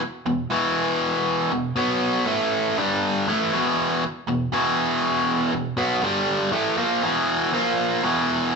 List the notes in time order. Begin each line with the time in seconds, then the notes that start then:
0.26 E2 B2
0.51 E2 B2 E3
1.52 E2 B2
1.76 B2 F#3 B3
2.26 A2 E3 A3
2.78 G2 D3 G3
3.28 A2 E3 A3
3.53 E2 B2 E3
4.28 E2 B2
4.52 E2 B2 E3
5.52 E2 B2
5.77 B2 F#3 B3
6.02 G2 D3 G3
6.52 A2 E3 A3
6.78 A#2 F3 A#3
7.03 E2 B2 E3
7.53 A#2 F3 A#3
8.02 E2 B2 E3